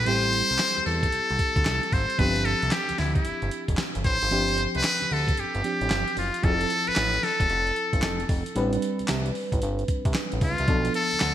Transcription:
0.06 analog synth bass A1, fm electric piano G3 C4 E4 G4, muted trumpet C5, closed hi-hat
0.23 closed hi-hat
0.33 closed hi-hat
0.50 analog synth bass C2, closed hi-hat
0.59 snare, clap, closed hi-hat
0.76 analog synth bass E2, closed hi-hat
0.86 analog synth bass E2, muted trumpet A4, open hi-hat
1.03 kick, closed hi-hat
1.12 analog synth bass C2, closed hi-hat
1.30 analog synth bass C2, closed hi-hat
1.39 kick, closed hi-hat
1.56 analog synth bass D2, kick, closed hi-hat
1.65 analog synth bass C2, snare, clap, closed hi-hat
1.83 closed hi-hat
1.92 analog synth bass G#1, muted trumpet C5, kick, open hi-hat
2.10 closed hi-hat
2.18 analog synth bass G1, fm electric piano F3 B3 D4 G4, muted trumpet B4, kick, closed hi-hat
2.25 fm electric piano C4
2.36 closed hi-hat
2.45 muted trumpet A4, closed hi-hat
2.62 analog synth bass C2, closed hi-hat
2.71 muted trumpet G4, snare, clap, closed hi-hat
2.89 analog synth bass D2, closed hi-hat
2.98 analog synth bass D2, muted trumpet E4, snare, open hi-hat
3.15 muted trumpet E4, kick, closed hi-hat
3.25 analog synth bass G1, closed hi-hat
3.42 analog synth bass G1, closed hi-hat
3.51 closed hi-hat
3.68 analog synth bass F1, kick, closed hi-hat
3.77 snare, clap, closed hi-hat
3.95 analog synth bass G1, closed hi-hat
4.04 analog synth bass A1, muted trumpet C5, kick, open hi-hat
4.22 analog synth bass G#1, closed hi-hat
4.30 analog synth bass G1, fm electric piano F3 C4 D4 G4, closed hi-hat
4.48 closed hi-hat
4.58 closed hi-hat
4.75 analog synth bass C2, muted trumpet B4, closed hi-hat
4.83 snare, clap, closed hi-hat
5.01 analog synth bass D2, closed hi-hat
5.11 analog synth bass D2, muted trumpet A4, open hi-hat
5.28 kick, closed hi-hat
5.37 analog synth bass G1, muted trumpet G4, closed hi-hat
5.55 analog synth bass G1, closed hi-hat
5.64 fm electric piano F3 C4 D4 G4, closed hi-hat
5.81 analog synth bass A1, closed hi-hat
5.90 analog synth bass G1, snare, clap, closed hi-hat
6.08 closed hi-hat
6.17 analog synth bass F#1, muted trumpet F4, open hi-hat
6.34 closed hi-hat
6.43 analog synth bass F1, fm electric piano F3 C4 E4 G#4, muted trumpet A4, kick, closed hi-hat
6.51 fm electric piano A4
6.61 closed hi-hat
6.70 closed hi-hat
6.87 analog synth bass A1, muted trumpet B4, closed hi-hat
6.96 analog synth bass A1, snare, clap, closed hi-hat
7.13 closed hi-hat
7.23 muted trumpet A4, snare, open hi-hat
7.40 analog synth bass E1, kick, closed hi-hat
7.50 analog synth bass F1, closed hi-hat
7.67 closed hi-hat
7.76 closed hi-hat
7.93 analog synth bass G1, kick, closed hi-hat
8.02 analog synth bass F1, snare, clap, closed hi-hat
8.20 closed hi-hat
8.29 analog synth bass F1, kick, open hi-hat
8.46 closed hi-hat
8.55 analog synth bass A1, fm electric piano G3 C4 D4 B4, closed hi-hat
8.73 closed hi-hat
8.82 closed hi-hat
8.99 analog synth bass C2, closed hi-hat
9.08 analog synth bass C2, snare, clap, closed hi-hat
9.26 closed hi-hat
9.35 open hi-hat
9.52 analog synth bass A1, kick, closed hi-hat
9.62 analog synth bass G1, closed hi-hat
9.79 closed hi-hat
9.88 kick, closed hi-hat
10.05 analog synth bass C2, kick, closed hi-hat
10.14 snare, clap, closed hi-hat
10.32 analog synth bass A1, closed hi-hat
10.41 analog synth bass C#2, muted trumpet F4, kick, open hi-hat
10.58 analog synth bass C2, closed hi-hat
10.67 analog synth bass B1, fm electric piano F3 B3 D4 A4, kick, closed hi-hat
10.85 closed hi-hat
10.94 muted trumpet A4, closed hi-hat
11.11 analog synth bass D2, closed hi-hat
11.20 analog synth bass D2, snare, clap, closed hi-hat

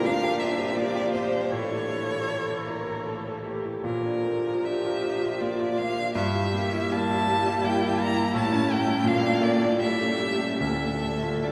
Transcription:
Already playing: grand piano A#2 A#3 D4 G4
0.05 viola F3, grand piano D4, cello D4, violin F5
0.23 grand piano G4
0.40 grand piano D4, violin E5
0.59 grand piano G4
0.75 grand piano A#3, cello G4, violin D5
0.95 grand piano G4
1.12 grand piano A#3, violin C5
1.33 grand piano D4
1.51 grand piano A2, viola E3, cello A4, violin C#5
1.71 grand piano E4
1.91 grand piano A3
2.11 grand piano A4
2.28 grand piano E4, cello A4
2.50 grand piano A4
2.66 grand piano E4, cello A#4
2.88 grand piano A4
3.06 grand piano A3, cello A4
3.27 grand piano A4
3.44 grand piano A3, cello G4
3.64 grand piano E4
3.84 grand piano A#2, viola F3, violin A#4
4.05 grand piano D4
4.25 grand piano A#3
4.46 grand piano F4
4.64 grand piano D4, cello G4, violin E5
4.85 grand piano F4
5.04 grand piano D4
5.23 grand piano F4
5.41 grand piano A#3, cello F4, violin D5
5.60 grand piano F4
5.78 grand piano A#3, violin F5
5.96 grand piano D4
6.13 grand piano G2, viola G3, cello G4, violin E5
6.34 grand piano E4
6.53 grand piano A#3
6.73 grand piano E4
6.91 viola G3, grand piano A#3, cello E4, violin A5
7.10 grand piano E4
7.28 grand piano A#3
7.46 grand piano E4
7.64 grand piano A#3, violin G5
7.82 grand piano E4
7.99 grand piano A#3, violin A#5
8.17 grand piano E4
8.35 grand piano A2, viola A3, violin A5
8.52 grand piano C#4
8.69 grand piano A3, violin G5
8.87 grand piano E4
9.04 grand piano A#2, viola A#3, violin F5
9.22 grand piano D4
9.41 grand piano A3, violin D5
9.60 grand piano D4
9.79 grand piano A2, viola G3, cello A4, violin E5
9.99 grand piano C#4
10.18 grand piano A3, cello G4
10.39 grand piano G4
10.59 grand piano D2, viola A3, cello A4, violin E5
10.81 grand piano D4
11.01 grand piano A3
11.23 grand piano F4
11.43 viola G3, grand piano D4, violin D5

